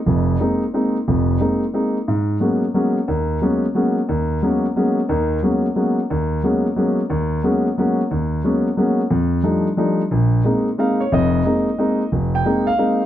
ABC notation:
X:1
M:3/4
L:1/8
Q:"Swing" 1/4=179
K:Cphr
V:1 name="Grand piano"
z6 | z6 | [K:G#dor] z6 | z6 |
z6 | z6 | z6 | z6 |
z6 | z6 | [K:Cphr] z4 f d | e6 |
z g2 f3 |]
V:2 name="Grand piano"
[F,,,F,,]2 [A,B,CE] z [A,B,CE] z | [F,,,F,,]2 [A,B,CE] z [A,B,CE] z | [K:G#dor] G,,2 [F,G,A,B,C] z [F,G,A,B,C] z | D,,2 [F,G,A,B,C] z [F,G,A,B,C] z |
D,,2 [F,G,A,B,C] z [F,G,A,B,C] z | [D,,D,]2 [F,G,A,B,C] z [F,G,A,B,C] z | D,,2 [F,G,A,B,C] z [F,G,A,B,C] z | D,,2 [F,G,A,B,C] z [F,G,A,B,C] z |
D,,2 [F,G,A,B,C] z [F,G,A,B,C] z | =F,,2 [=F,=G,=A,=D_E] z [F,G,A,DE] z | [K:Cphr] B,,,2 [A,B,CE] z [A,B,CE] z | [F,,,F,,]2 [A,B,CE] z [A,B,CE] z |
F,,,2 [A,B,CE] z [A,B,CE] z |]